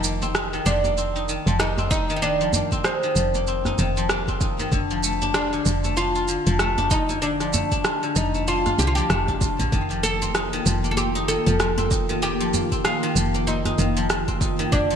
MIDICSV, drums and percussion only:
0, 0, Header, 1, 3, 480
1, 0, Start_track
1, 0, Tempo, 625000
1, 1706, Time_signature, 4, 2, 24, 8
1, 11487, End_track
2, 0, Start_track
2, 0, Title_t, "Djembe"
2, 169, Note_on_c, 9, 63, 62
2, 245, Note_off_c, 9, 63, 0
2, 645, Note_on_c, 9, 63, 64
2, 722, Note_off_c, 9, 63, 0
2, 1129, Note_on_c, 9, 62, 34
2, 1205, Note_off_c, 9, 62, 0
2, 1364, Note_on_c, 9, 62, 45
2, 1364, Note_on_c, 9, 64, 80
2, 1440, Note_off_c, 9, 64, 0
2, 1441, Note_off_c, 9, 62, 0
2, 1603, Note_on_c, 9, 63, 62
2, 1679, Note_off_c, 9, 63, 0
2, 1942, Note_on_c, 9, 64, 88
2, 2019, Note_off_c, 9, 64, 0
2, 2090, Note_on_c, 9, 63, 57
2, 2167, Note_off_c, 9, 63, 0
2, 2569, Note_on_c, 9, 63, 62
2, 2646, Note_off_c, 9, 63, 0
2, 2804, Note_on_c, 9, 64, 85
2, 2881, Note_off_c, 9, 64, 0
2, 2901, Note_on_c, 9, 62, 36
2, 2904, Note_on_c, 9, 63, 81
2, 2978, Note_off_c, 9, 62, 0
2, 2981, Note_off_c, 9, 63, 0
2, 3289, Note_on_c, 9, 63, 55
2, 3366, Note_off_c, 9, 63, 0
2, 3387, Note_on_c, 9, 62, 54
2, 3464, Note_off_c, 9, 62, 0
2, 3525, Note_on_c, 9, 63, 72
2, 3601, Note_off_c, 9, 63, 0
2, 4010, Note_on_c, 9, 63, 64
2, 4087, Note_off_c, 9, 63, 0
2, 4492, Note_on_c, 9, 63, 56
2, 4569, Note_off_c, 9, 63, 0
2, 4970, Note_on_c, 9, 62, 32
2, 5047, Note_off_c, 9, 62, 0
2, 5206, Note_on_c, 9, 64, 87
2, 5211, Note_on_c, 9, 62, 49
2, 5283, Note_off_c, 9, 64, 0
2, 5288, Note_off_c, 9, 62, 0
2, 5450, Note_on_c, 9, 63, 66
2, 5527, Note_off_c, 9, 63, 0
2, 5792, Note_on_c, 9, 64, 88
2, 5869, Note_off_c, 9, 64, 0
2, 5930, Note_on_c, 9, 63, 51
2, 6007, Note_off_c, 9, 63, 0
2, 6411, Note_on_c, 9, 63, 57
2, 6488, Note_off_c, 9, 63, 0
2, 6655, Note_on_c, 9, 64, 77
2, 6732, Note_off_c, 9, 64, 0
2, 6750, Note_on_c, 9, 63, 77
2, 6751, Note_on_c, 9, 62, 34
2, 6827, Note_off_c, 9, 63, 0
2, 6828, Note_off_c, 9, 62, 0
2, 7122, Note_on_c, 9, 63, 57
2, 7199, Note_off_c, 9, 63, 0
2, 7227, Note_on_c, 9, 62, 41
2, 7304, Note_off_c, 9, 62, 0
2, 7374, Note_on_c, 9, 63, 58
2, 7451, Note_off_c, 9, 63, 0
2, 7852, Note_on_c, 9, 63, 59
2, 7928, Note_off_c, 9, 63, 0
2, 8330, Note_on_c, 9, 63, 54
2, 8407, Note_off_c, 9, 63, 0
2, 8808, Note_on_c, 9, 62, 31
2, 8885, Note_off_c, 9, 62, 0
2, 9046, Note_on_c, 9, 64, 81
2, 9051, Note_on_c, 9, 62, 46
2, 9123, Note_off_c, 9, 64, 0
2, 9128, Note_off_c, 9, 62, 0
2, 9295, Note_on_c, 9, 63, 60
2, 9372, Note_off_c, 9, 63, 0
2, 9630, Note_on_c, 9, 64, 76
2, 9707, Note_off_c, 9, 64, 0
2, 9768, Note_on_c, 9, 63, 58
2, 9845, Note_off_c, 9, 63, 0
2, 10249, Note_on_c, 9, 63, 62
2, 10326, Note_off_c, 9, 63, 0
2, 10487, Note_on_c, 9, 64, 72
2, 10563, Note_off_c, 9, 64, 0
2, 10583, Note_on_c, 9, 62, 30
2, 10588, Note_on_c, 9, 63, 70
2, 10660, Note_off_c, 9, 62, 0
2, 10665, Note_off_c, 9, 63, 0
2, 10969, Note_on_c, 9, 63, 59
2, 11046, Note_off_c, 9, 63, 0
2, 11063, Note_on_c, 9, 62, 48
2, 11140, Note_off_c, 9, 62, 0
2, 11203, Note_on_c, 9, 63, 67
2, 11280, Note_off_c, 9, 63, 0
2, 11487, End_track
3, 0, Start_track
3, 0, Title_t, "Drums"
3, 29, Note_on_c, 9, 82, 72
3, 106, Note_off_c, 9, 82, 0
3, 170, Note_on_c, 9, 82, 33
3, 247, Note_off_c, 9, 82, 0
3, 267, Note_on_c, 9, 37, 102
3, 269, Note_on_c, 9, 82, 42
3, 344, Note_off_c, 9, 37, 0
3, 346, Note_off_c, 9, 82, 0
3, 409, Note_on_c, 9, 82, 20
3, 486, Note_off_c, 9, 82, 0
3, 507, Note_on_c, 9, 82, 74
3, 584, Note_off_c, 9, 82, 0
3, 649, Note_on_c, 9, 82, 31
3, 725, Note_off_c, 9, 82, 0
3, 749, Note_on_c, 9, 82, 41
3, 826, Note_off_c, 9, 82, 0
3, 890, Note_on_c, 9, 82, 19
3, 966, Note_off_c, 9, 82, 0
3, 988, Note_on_c, 9, 82, 61
3, 1065, Note_off_c, 9, 82, 0
3, 1130, Note_on_c, 9, 82, 29
3, 1207, Note_off_c, 9, 82, 0
3, 1226, Note_on_c, 9, 37, 91
3, 1227, Note_on_c, 9, 82, 43
3, 1302, Note_off_c, 9, 37, 0
3, 1304, Note_off_c, 9, 82, 0
3, 1370, Note_on_c, 9, 82, 21
3, 1446, Note_off_c, 9, 82, 0
3, 1466, Note_on_c, 9, 36, 104
3, 1468, Note_on_c, 9, 82, 71
3, 1543, Note_off_c, 9, 36, 0
3, 1545, Note_off_c, 9, 82, 0
3, 1609, Note_on_c, 9, 82, 29
3, 1686, Note_off_c, 9, 82, 0
3, 1708, Note_on_c, 9, 82, 40
3, 1784, Note_off_c, 9, 82, 0
3, 1849, Note_on_c, 9, 82, 21
3, 1926, Note_off_c, 9, 82, 0
3, 1947, Note_on_c, 9, 82, 79
3, 2024, Note_off_c, 9, 82, 0
3, 2087, Note_on_c, 9, 36, 54
3, 2087, Note_on_c, 9, 82, 34
3, 2163, Note_off_c, 9, 36, 0
3, 2164, Note_off_c, 9, 82, 0
3, 2184, Note_on_c, 9, 37, 100
3, 2186, Note_on_c, 9, 82, 44
3, 2261, Note_off_c, 9, 37, 0
3, 2263, Note_off_c, 9, 82, 0
3, 2327, Note_on_c, 9, 82, 21
3, 2404, Note_off_c, 9, 82, 0
3, 2427, Note_on_c, 9, 82, 75
3, 2504, Note_off_c, 9, 82, 0
3, 2568, Note_on_c, 9, 82, 33
3, 2645, Note_off_c, 9, 82, 0
3, 2665, Note_on_c, 9, 82, 40
3, 2742, Note_off_c, 9, 82, 0
3, 2806, Note_on_c, 9, 37, 27
3, 2807, Note_on_c, 9, 82, 20
3, 2882, Note_off_c, 9, 37, 0
3, 2884, Note_off_c, 9, 82, 0
3, 2905, Note_on_c, 9, 82, 67
3, 2982, Note_off_c, 9, 82, 0
3, 3048, Note_on_c, 9, 82, 32
3, 3125, Note_off_c, 9, 82, 0
3, 3144, Note_on_c, 9, 37, 97
3, 3146, Note_on_c, 9, 82, 42
3, 3221, Note_off_c, 9, 37, 0
3, 3223, Note_off_c, 9, 82, 0
3, 3286, Note_on_c, 9, 36, 59
3, 3286, Note_on_c, 9, 82, 22
3, 3362, Note_off_c, 9, 36, 0
3, 3363, Note_off_c, 9, 82, 0
3, 3384, Note_on_c, 9, 36, 103
3, 3385, Note_on_c, 9, 82, 73
3, 3461, Note_off_c, 9, 36, 0
3, 3462, Note_off_c, 9, 82, 0
3, 3526, Note_on_c, 9, 82, 31
3, 3603, Note_off_c, 9, 82, 0
3, 3624, Note_on_c, 9, 36, 100
3, 3625, Note_on_c, 9, 82, 42
3, 3701, Note_off_c, 9, 36, 0
3, 3702, Note_off_c, 9, 82, 0
3, 3767, Note_on_c, 9, 82, 21
3, 3844, Note_off_c, 9, 82, 0
3, 3866, Note_on_c, 9, 82, 75
3, 3943, Note_off_c, 9, 82, 0
3, 4007, Note_on_c, 9, 82, 36
3, 4083, Note_off_c, 9, 82, 0
3, 4103, Note_on_c, 9, 37, 99
3, 4104, Note_on_c, 9, 82, 41
3, 4179, Note_off_c, 9, 37, 0
3, 4181, Note_off_c, 9, 82, 0
3, 4247, Note_on_c, 9, 82, 22
3, 4324, Note_off_c, 9, 82, 0
3, 4344, Note_on_c, 9, 82, 80
3, 4421, Note_off_c, 9, 82, 0
3, 4486, Note_on_c, 9, 82, 35
3, 4563, Note_off_c, 9, 82, 0
3, 4584, Note_on_c, 9, 82, 45
3, 4661, Note_off_c, 9, 82, 0
3, 4725, Note_on_c, 9, 82, 20
3, 4802, Note_off_c, 9, 82, 0
3, 4824, Note_on_c, 9, 82, 66
3, 4901, Note_off_c, 9, 82, 0
3, 4966, Note_on_c, 9, 82, 32
3, 5043, Note_off_c, 9, 82, 0
3, 5063, Note_on_c, 9, 37, 94
3, 5065, Note_on_c, 9, 82, 45
3, 5140, Note_off_c, 9, 37, 0
3, 5142, Note_off_c, 9, 82, 0
3, 5207, Note_on_c, 9, 82, 23
3, 5284, Note_off_c, 9, 82, 0
3, 5305, Note_on_c, 9, 36, 100
3, 5306, Note_on_c, 9, 82, 78
3, 5382, Note_off_c, 9, 36, 0
3, 5382, Note_off_c, 9, 82, 0
3, 5447, Note_on_c, 9, 82, 35
3, 5524, Note_off_c, 9, 82, 0
3, 5546, Note_on_c, 9, 82, 39
3, 5623, Note_off_c, 9, 82, 0
3, 5686, Note_on_c, 9, 37, 28
3, 5688, Note_on_c, 9, 82, 21
3, 5763, Note_off_c, 9, 37, 0
3, 5764, Note_off_c, 9, 82, 0
3, 5786, Note_on_c, 9, 82, 75
3, 5863, Note_off_c, 9, 82, 0
3, 5927, Note_on_c, 9, 36, 62
3, 5928, Note_on_c, 9, 82, 35
3, 6004, Note_off_c, 9, 36, 0
3, 6005, Note_off_c, 9, 82, 0
3, 6025, Note_on_c, 9, 37, 97
3, 6027, Note_on_c, 9, 82, 43
3, 6102, Note_off_c, 9, 37, 0
3, 6104, Note_off_c, 9, 82, 0
3, 6169, Note_on_c, 9, 82, 22
3, 6245, Note_off_c, 9, 82, 0
3, 6267, Note_on_c, 9, 82, 76
3, 6344, Note_off_c, 9, 82, 0
3, 6409, Note_on_c, 9, 82, 32
3, 6486, Note_off_c, 9, 82, 0
3, 6510, Note_on_c, 9, 82, 43
3, 6587, Note_off_c, 9, 82, 0
3, 6651, Note_on_c, 9, 37, 27
3, 6652, Note_on_c, 9, 82, 21
3, 6727, Note_off_c, 9, 37, 0
3, 6729, Note_off_c, 9, 82, 0
3, 6752, Note_on_c, 9, 82, 68
3, 6829, Note_off_c, 9, 82, 0
3, 6893, Note_on_c, 9, 82, 32
3, 6969, Note_off_c, 9, 82, 0
3, 6988, Note_on_c, 9, 37, 92
3, 6989, Note_on_c, 9, 82, 42
3, 7065, Note_off_c, 9, 37, 0
3, 7066, Note_off_c, 9, 82, 0
3, 7129, Note_on_c, 9, 36, 60
3, 7131, Note_on_c, 9, 82, 22
3, 7205, Note_off_c, 9, 36, 0
3, 7207, Note_off_c, 9, 82, 0
3, 7227, Note_on_c, 9, 36, 109
3, 7229, Note_on_c, 9, 82, 76
3, 7304, Note_off_c, 9, 36, 0
3, 7306, Note_off_c, 9, 82, 0
3, 7371, Note_on_c, 9, 82, 34
3, 7448, Note_off_c, 9, 82, 0
3, 7467, Note_on_c, 9, 36, 100
3, 7471, Note_on_c, 9, 82, 38
3, 7544, Note_off_c, 9, 36, 0
3, 7548, Note_off_c, 9, 82, 0
3, 7610, Note_on_c, 9, 82, 20
3, 7687, Note_off_c, 9, 82, 0
3, 7708, Note_on_c, 9, 82, 72
3, 7785, Note_off_c, 9, 82, 0
3, 7849, Note_on_c, 9, 82, 34
3, 7926, Note_off_c, 9, 82, 0
3, 7947, Note_on_c, 9, 37, 93
3, 7948, Note_on_c, 9, 82, 45
3, 8023, Note_off_c, 9, 37, 0
3, 8025, Note_off_c, 9, 82, 0
3, 8090, Note_on_c, 9, 82, 19
3, 8167, Note_off_c, 9, 82, 0
3, 8189, Note_on_c, 9, 82, 77
3, 8265, Note_off_c, 9, 82, 0
3, 8329, Note_on_c, 9, 82, 31
3, 8406, Note_off_c, 9, 82, 0
3, 8428, Note_on_c, 9, 82, 43
3, 8505, Note_off_c, 9, 82, 0
3, 8570, Note_on_c, 9, 82, 21
3, 8646, Note_off_c, 9, 82, 0
3, 8668, Note_on_c, 9, 82, 66
3, 8745, Note_off_c, 9, 82, 0
3, 8810, Note_on_c, 9, 82, 30
3, 8887, Note_off_c, 9, 82, 0
3, 8907, Note_on_c, 9, 37, 91
3, 8909, Note_on_c, 9, 82, 39
3, 8984, Note_off_c, 9, 37, 0
3, 8986, Note_off_c, 9, 82, 0
3, 9051, Note_on_c, 9, 82, 21
3, 9127, Note_off_c, 9, 82, 0
3, 9146, Note_on_c, 9, 36, 104
3, 9148, Note_on_c, 9, 82, 73
3, 9223, Note_off_c, 9, 36, 0
3, 9224, Note_off_c, 9, 82, 0
3, 9288, Note_on_c, 9, 82, 34
3, 9365, Note_off_c, 9, 82, 0
3, 9389, Note_on_c, 9, 82, 38
3, 9466, Note_off_c, 9, 82, 0
3, 9530, Note_on_c, 9, 82, 20
3, 9607, Note_off_c, 9, 82, 0
3, 9628, Note_on_c, 9, 82, 72
3, 9705, Note_off_c, 9, 82, 0
3, 9767, Note_on_c, 9, 36, 53
3, 9771, Note_on_c, 9, 82, 34
3, 9844, Note_off_c, 9, 36, 0
3, 9848, Note_off_c, 9, 82, 0
3, 9866, Note_on_c, 9, 37, 91
3, 9868, Note_on_c, 9, 82, 39
3, 9943, Note_off_c, 9, 37, 0
3, 9945, Note_off_c, 9, 82, 0
3, 10010, Note_on_c, 9, 82, 19
3, 10086, Note_off_c, 9, 82, 0
3, 10109, Note_on_c, 9, 82, 75
3, 10186, Note_off_c, 9, 82, 0
3, 10249, Note_on_c, 9, 82, 31
3, 10326, Note_off_c, 9, 82, 0
3, 10347, Note_on_c, 9, 82, 43
3, 10424, Note_off_c, 9, 82, 0
3, 10488, Note_on_c, 9, 37, 27
3, 10490, Note_on_c, 9, 82, 19
3, 10565, Note_off_c, 9, 37, 0
3, 10567, Note_off_c, 9, 82, 0
3, 10588, Note_on_c, 9, 82, 60
3, 10665, Note_off_c, 9, 82, 0
3, 10730, Note_on_c, 9, 82, 32
3, 10806, Note_off_c, 9, 82, 0
3, 10828, Note_on_c, 9, 37, 90
3, 10830, Note_on_c, 9, 82, 42
3, 10905, Note_off_c, 9, 37, 0
3, 10907, Note_off_c, 9, 82, 0
3, 10966, Note_on_c, 9, 36, 57
3, 10970, Note_on_c, 9, 82, 22
3, 11043, Note_off_c, 9, 36, 0
3, 11047, Note_off_c, 9, 82, 0
3, 11066, Note_on_c, 9, 36, 96
3, 11070, Note_on_c, 9, 82, 74
3, 11142, Note_off_c, 9, 36, 0
3, 11147, Note_off_c, 9, 82, 0
3, 11210, Note_on_c, 9, 82, 30
3, 11286, Note_off_c, 9, 82, 0
3, 11306, Note_on_c, 9, 36, 100
3, 11308, Note_on_c, 9, 82, 38
3, 11383, Note_off_c, 9, 36, 0
3, 11385, Note_off_c, 9, 82, 0
3, 11450, Note_on_c, 9, 82, 20
3, 11487, Note_off_c, 9, 82, 0
3, 11487, End_track
0, 0, End_of_file